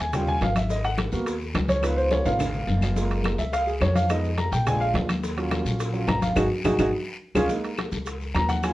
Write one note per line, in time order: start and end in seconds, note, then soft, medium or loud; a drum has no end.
0.00 0.38 D#2 medium
0.00 0.14 G#5 medium
0.00 high bongo soft
0.13 0.33 G3 medium
0.13 0.33 C#4 medium
0.13 0.33 F4 medium
0.13 0.28 G5 medium
0.13 high bongo medium
0.13 high conga soft
0.13 low conga medium
0.13 high timbale medium
0.13 long guiro medium
0.13 claves medium
0.13 maracas medium
0.27 0.42 G#5 loud
0.27 high conga soft
0.27 low conga medium
0.27 maracas soft
0.41 1.07 G#1 medium
0.41 0.56 F5 medium
0.41 high bongo soft
0.41 low bongo medium
0.41 high conga medium
0.41 high timbale medium
0.41 low timbale medium
0.41 short guiro medium
0.41 maracas soft
0.55 0.70 E5 medium
0.55 high bongo soft
0.55 high conga medium
0.55 high timbale medium
0.55 short guiro medium
0.55 claves medium
0.55 maracas medium
0.69 0.84 D#5 medium
0.69 high bongo medium
0.69 high conga soft
0.69 long guiro medium
0.69 maracas medium
0.84 0.93 F#5 loud
0.84 high bongo soft
0.84 high timbale medium
0.84 maracas soft
0.98 high bongo medium
0.98 high conga loud
0.98 high timbale loud
0.98 low timbale medium
0.98 short guiro medium
0.98 claves medium
0.98 maracas soft
1.12 1.52 D#2 medium
1.12 1.31 A#3 medium
1.12 1.31 B3 medium
1.12 1.32 F#4 medium
1.12 high bongo soft
1.12 high conga soft
1.12 short guiro medium
1.12 maracas medium
1.26 high bongo medium
1.26 high conga soft
1.26 high timbale medium
1.26 long guiro medium
1.26 maracas medium
1.41 high conga soft
1.41 maracas soft
1.54 2.20 C#2 loud
1.54 high bongo soft
1.54 low bongo medium
1.54 high conga medium
1.54 high timbale loud
1.54 low timbale medium
1.54 short guiro medium
1.54 claves medium
1.54 maracas soft
1.68 1.83 C#5 medium
1.68 high bongo soft
1.68 high conga medium
1.68 high timbale medium
1.68 short guiro medium
1.68 maracas medium
1.82 2.23 B3 medium
1.82 2.24 D#4 soft
1.82 2.24 F4 medium
1.82 1.97 B4 medium
1.82 high bongo medium
1.82 high conga soft
1.82 high timbale medium
1.82 long guiro medium
1.82 claves medium
1.82 maracas medium
1.97 2.11 C5 medium
1.97 high bongo soft
1.97 high conga soft
1.97 maracas soft
2.11 2.25 C#5 medium
2.11 high bongo medium
2.11 high conga medium
2.11 high timbale medium
2.11 short guiro medium
2.11 maracas soft
2.25 2.65 G#1 medium
2.25 2.38 B3 soft
2.25 2.38 D#4 soft
2.25 2.39 F4 medium
2.25 2.92 F5 medium
2.25 high bongo soft
2.25 high timbale medium
2.25 short guiro medium
2.25 maracas medium
2.39 high bongo medium
2.39 high conga soft
2.39 low conga medium
2.39 high timbale medium
2.39 long guiro medium
2.39 claves medium
2.39 maracas medium
2.53 high conga soft
2.53 low conga medium
2.53 maracas soft
2.67 3.33 F#1 loud
2.67 high bongo soft
2.67 low bongo medium
2.67 high conga medium
2.67 short guiro medium
2.67 maracas soft
2.81 high bongo soft
2.81 high conga medium
2.81 low timbale medium
2.81 short guiro medium
2.81 claves medium
2.81 maracas medium
2.96 3.37 G#3 medium
2.96 3.37 A#3 medium
2.96 3.37 F4 medium
2.96 high bongo medium
2.96 high conga soft
2.96 long guiro medium
2.96 maracas loud
3.11 high bongo soft
3.11 high timbale medium
3.11 maracas soft
3.24 high bongo medium
3.24 high conga medium
3.24 high timbale loud
3.24 low timbale medium
3.24 short guiro medium
3.24 claves medium
3.24 maracas soft
3.39 3.78 C#2 medium
3.39 3.53 E5 medium
3.39 high bongo soft
3.39 high conga soft
3.39 short guiro medium
3.39 maracas medium
3.53 3.67 F5 loud
3.53 high bongo medium
3.53 high conga soft
3.53 high timbale medium
3.53 long guiro medium
3.53 maracas medium
3.67 3.81 G#4 medium
3.67 high conga soft
3.67 maracas soft
3.81 4.47 F2 medium
3.81 3.95 C#5 medium
3.81 high bongo soft
3.81 low bongo medium
3.81 high conga medium
3.81 high timbale medium
3.81 low timbale medium
3.81 short guiro medium
3.81 claves medium
3.81 maracas soft
3.96 4.09 F5 medium
3.96 high bongo soft
3.96 high conga medium
3.96 high timbale medium
3.96 short guiro medium
3.96 maracas medium
4.10 4.29 G#3 medium
4.10 4.29 B3 soft
4.10 4.29 D#4 medium
4.10 4.37 D#5 medium
4.10 high bongo medium
4.10 high conga soft
4.10 high timbale medium
4.10 long guiro medium
4.10 claves medium
4.10 maracas medium
4.24 high bongo soft
4.24 high conga soft
4.24 maracas soft
4.38 4.52 A#5 medium
4.38 high bongo medium
4.38 high conga medium
4.38 high timbale medium
4.38 low timbale medium
4.38 short guiro medium
4.38 maracas soft
4.52 4.92 A#1 medium
4.52 4.66 G5 loud
4.52 high bongo soft
4.52 high timbale medium
4.52 short guiro medium
4.52 maracas medium
4.67 5.07 G#3 medium
4.67 5.07 D4 medium
4.67 5.07 F4 medium
4.67 4.81 G#5 loud
4.67 high bongo medium
4.67 high conga soft
4.67 low conga medium
4.67 high timbale loud
4.67 long guiro medium
4.67 claves medium
4.67 maracas medium
4.81 4.89 F5 loud
4.81 high conga soft
4.81 maracas soft
4.94 5.60 D#2 loud
4.94 high bongo soft
4.94 low bongo medium
4.94 high conga medium
4.94 high timbale medium
4.94 low timbale medium
4.94 short guiro medium
4.94 maracas soft
5.09 high bongo soft
5.09 high conga medium
5.09 high timbale loud
5.09 short guiro medium
5.09 claves medium
5.09 maracas medium
5.23 high bongo medium
5.23 high conga soft
5.23 long guiro medium
5.23 maracas medium
5.37 5.92 F#3 medium
5.37 5.92 C#4 medium
5.37 5.92 F4 medium
5.37 high bongo soft
5.37 high conga soft
5.37 high timbale medium
5.37 maracas soft
5.51 high bongo medium
5.51 high conga loud
5.51 high timbale loud
5.51 low timbale medium
5.51 short guiro medium
5.51 claves medium
5.51 maracas soft
5.65 6.05 A#1 medium
5.65 high bongo soft
5.65 high conga soft
5.65 short guiro medium
5.65 maracas medium
5.80 high bongo medium
5.80 high timbale medium
5.80 long guiro medium
5.80 maracas loud
5.93 6.06 F#3 soft
5.93 6.07 C#4 soft
5.93 6.07 F4 medium
5.93 maracas soft
6.07 6.34 G#1 loud
6.07 6.22 A#5 loud
6.07 high bongo soft
6.07 low bongo medium
6.07 high conga medium
6.07 high timbale loud
6.07 low timbale medium
6.07 short guiro medium
6.07 claves medium
6.07 maracas soft
6.22 6.36 F5 medium
6.22 high bongo soft
6.22 high conga loud
6.22 high timbale medium
6.22 short guiro medium
6.22 maracas medium
6.36 6.47 G#1 loud
6.36 6.45 D#4 medium
6.36 6.45 F#4 loud
6.36 6.45 G#4 medium
6.36 low bongo loud
6.36 high conga loud
6.36 high timbale loud
6.36 long guiro loud
6.36 claves loud
6.36 maracas loud
6.64 6.75 G#1 medium
6.64 6.74 D#4 medium
6.64 6.74 F#4 medium
6.64 6.74 G#4 loud
6.64 low bongo loud
6.64 high conga medium
6.64 high timbale loud
6.64 long guiro loud
6.64 claves medium
6.64 maracas loud
6.78 6.89 G#1 medium
6.78 6.88 D#4 loud
6.78 6.88 F#4 medium
6.78 6.88 G#4 loud
6.78 low bongo medium
6.78 high conga medium
6.78 high timbale loud
6.78 long guiro medium
6.78 claves loud
6.78 maracas loud
7.35 7.46 C#2 loud
7.35 7.45 C#4 medium
7.35 7.44 F4 loud
7.35 7.44 G#4 loud
7.35 low bongo loud
7.35 high conga loud
7.35 high timbale loud
7.35 long guiro loud
7.35 claves loud
7.35 maracas loud
7.49 7.68 G#3 soft
7.49 7.69 A#3 soft
7.49 7.69 D#4 medium
7.49 high bongo medium
7.49 high conga soft
7.49 long guiro medium
7.49 maracas medium
7.64 high bongo soft
7.64 high conga soft
7.64 high timbale medium
7.64 maracas soft
7.78 high bongo medium
7.78 high conga medium
7.78 high timbale loud
7.78 low timbale medium
7.78 short guiro medium
7.78 claves medium
7.78 maracas soft
7.92 8.32 C#2 medium
7.92 high bongo soft
7.92 high conga soft
7.92 short guiro medium
7.92 maracas medium
8.06 high bongo medium
8.06 high conga soft
8.06 high timbale medium
8.06 long guiro medium
8.06 maracas medium
8.21 high conga soft
8.21 maracas soft
8.34 8.73 D#2 medium
8.34 8.49 A#5 loud
8.34 high bongo soft
8.34 low bongo medium
8.34 high conga medium
8.34 high timbale loud
8.34 low timbale medium
8.34 short guiro medium
8.34 claves medium
8.34 maracas soft
8.49 8.63 F#5 loud
8.49 high bongo soft
8.49 high conga medium
8.49 high timbale medium
8.49 short guiro medium
8.49 maracas medium
8.63 8.73 F#3 soft
8.63 8.73 C#4 soft
8.63 8.73 F4 medium
8.63 8.73 G#5 medium
8.63 high bongo medium
8.63 high conga soft
8.63 high timbale loud
8.63 long guiro medium
8.63 claves medium
8.63 maracas medium